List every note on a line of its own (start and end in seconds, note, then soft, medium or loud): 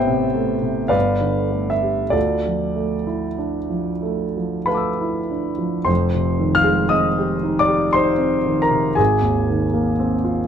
0.00 0.89 A1 medium
0.00 0.07 C3 soft
0.00 0.35 A3 soft
0.00 0.25 B3 soft
0.00 0.97 G4 soft
0.00 0.97 C5 medium
0.00 0.97 E5 medium
0.00 0.93 G5 medium
0.00 0.96 A5 medium
0.07 0.53 C3 soft
0.35 0.82 A3 soft
0.62 0.93 C3 soft
0.88 2.10 G1 soft
0.88 1.68 B4 medium
0.88 1.68 D5 medium
0.88 1.72 F5 medium
1.21 1.71 D3 soft
1.51 2.02 A3 soft
1.70 2.13 E5 medium
1.83 2.15 G4 soft
2.10 5.84 D2 soft
2.10 4.66 F4 soft
2.10 4.66 A4 soft
2.10 4.69 D5 medium
2.46 2.95 F3 soft
2.76 3.26 A3 soft
3.07 3.57 E4 soft
3.38 3.91 D4 soft
3.70 4.25 F3 soft
4.03 4.58 A3 soft
4.37 4.90 F3 soft
4.66 5.20 A3 soft
4.66 5.84 B4 soft
4.66 5.84 F5 soft
4.66 5.87 B5 medium
4.71 5.85 A5 soft
4.71 5.87 D6 soft
4.77 5.89 E6 soft
5.01 5.50 E4 soft
5.31 5.78 D4 soft
5.58 5.88 F3 soft
5.85 8.93 F1 soft
5.85 8.94 F2 soft
5.85 6.54 C5 soft
5.85 6.57 C6 medium
6.15 6.58 C3 soft
6.39 6.83 D#3 soft
6.55 6.90 F5 medium
6.55 6.92 F6 medium
6.64 7.08 G#3 soft
6.89 7.34 C4 soft
6.89 7.57 D#5 medium
6.89 7.61 D#6 medium
7.18 7.61 G4 soft
7.43 7.86 D#4 soft
7.59 7.93 D5 medium
7.59 7.95 D6 medium
7.67 8.10 G4 soft
7.93 8.37 D#4 soft
7.93 8.60 C5 medium
7.93 8.63 C6 medium
8.18 8.61 C4 soft
8.46 8.88 D#3 soft
8.62 8.95 A#4 medium
8.62 8.98 A#5 medium
8.70 8.98 C3 soft
8.95 10.47 G#1 soft
8.95 10.46 G#4 medium
8.95 10.47 G#5 medium
9.22 9.64 D#2 soft
9.49 9.91 D#3 soft
9.74 10.15 A#3 soft
10.00 10.40 C4 soft
10.24 10.47 F4 soft